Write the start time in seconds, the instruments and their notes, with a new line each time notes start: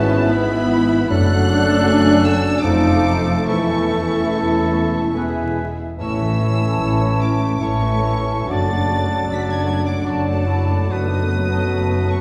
Already playing: double bass section G#1, cello section G#2, harp G#2 G#3 B3 E4 B4 E5, bassoon E3, french horn section B3 E4, clarinet B3, viola section C#4 F#4, violin section E4 E5 A5, oboe B4, flute section E5
0.09 harp B5
0.28 viola section B3 E4, violin section E4 E5 B5, harp E5
0.50 harp B4
0.70 harp E4
0.91 harp B3
1.10 double bass section F#1, harp F#2, cello section F#2, bassoon F#3, french horn section A3 D4, viola section A3 D4, clarinet D4, violin section A4 F#5 F#6, oboe A4, flute section D5
1.30 harp F#3
1.48 harp D4
1.67 harp F#4
1.85 harp A4, violin section G#5
2.05 harp D5
2.24 harp F#5, violin section E6
2.44 harp A5
2.61 double bass section F1, harp F2, cello section F2, bassoon F3, viola section A3 D#4, french horn section D#4, clarinet D#4, oboe A4, violin section A4 A5 D6
2.66 flute section F5
2.84 harp F3
3.05 harp D#4
3.26 harp F3
3.46 double bass section E1, harp E2, cello section E2, bassoon E3, viola section A3 E4, french horn section E4, clarinet E4, violin section A4 E5 C#6, oboe A4, flute section A5
3.67 harp E3
3.89 harp C#4
4.10 harp E4
4.31 harp A4
4.53 harp C#5
4.74 harp E5
4.93 harp A5
5.14 harp E2, bassoon E3, french horn section G#3, viola section B3 E4, clarinet E4, violin section G#4 E5, oboe B4, flute section G#5
5.35 harp B2
5.56 harp B3
5.77 harp E4
5.98 double bass section A1, cello section A2, harp A2, bassoon E3, viola section C#4 E4, violin section C#5 E6, flute section A5
6.02 french horn section A3 C#4, clarinet E4, oboe C#5
6.19 harp E3, viola section A3 C#4, violin section A4 E5
6.41 harp C#4, viola section C#4 E4, violin section C#5
6.61 viola section A3 C#4, harp E4, violin section A4 E5
6.81 double bass section A1, cello section A2, viola section C#4 E4, harp A4, violin section C#5
7.01 viola section A3 C#4, violin section A4 E5, harp C#5
7.20 viola section C#4 E4, violin section C#5 D6, harp E5
7.39 viola section A3 C#4, violin section A4 E5, harp A5
7.61 double bass section A1, cello section A2, bassoon E3, viola section C#4 E4, clarinet E4, violin section C#5 C#6, oboe C#5, harp E5, flute section A5
7.81 viola section A3 C#4, violin section A4 E5, harp C#5
8.01 viola section C#4 E4, harp A4, violin section C#5
8.25 viola section A3 C#4, harp C#4, violin section A4 E5
8.46 double bass section F#1, harp F#2, cello section F#2, viola section F#3 F#4, bassoon F#3, clarinet D4, french horn section D4, violin section F#4 D5, flute section A5
8.51 oboe D5, violin section A6
8.68 harp F#3, viola section A3 D4, violin section A4 F#5
8.88 viola section F#3 F#4, harp D4, violin section F#4 D5
9.08 viola section A3 D4, harp F#4, violin section A4 F#5
9.27 double bass section F#1, cello section F#2, viola section F#3 F#4, violin section F#4 D5, harp A4
9.34 violin section B6
9.41 violin section A6
9.46 viola section A3 D4, violin section A4 F#5, harp D5
9.51 violin section G#6
9.61 violin section A6
9.66 viola section F#3 F#4, violin section F#4 D5 G#6, harp F#5
9.85 viola section A3 D4, violin section A4 F#5 D6, harp A5
10.04 double bass section F#1, cello section F#2, viola section F#3 F#4, bassoon F#3, clarinet D4, violin section F#4 D5 A5, oboe D5, harp F#5, flute section A5
10.25 viola section A3 D4, harp D5
10.29 violin section A4 F#5
10.46 viola section F#3 F#4, clarinet E4, harp A4
10.50 violin section F#4 D5
10.68 viola section A3 D4, harp D4
10.72 violin section A4 F#5
10.87 double bass section F#1, cello section F#2, harp F#2, viola section A3 F#4, french horn section A3 B3, clarinet F#4
10.91 bassoon F#3, oboe B4, violin section B4 D#6, flute section A5
11.08 harp F#3, viola section B3 D#4
11.13 violin section A4 D#5
11.28 viola section A3 F#4, harp B3
11.32 violin section B4
11.48 viola section B3 D#4, harp F#4
11.52 violin section A4 D#5
11.68 double bass section F#1, cello section F#2, viola section A3 F#4, harp A4
11.73 violin section B4
11.88 viola section B3 D#4, harp B4
11.92 violin section A4 D#5
12.07 viola section A3 F#4, harp F#5, violin section C#6
12.13 violin section B4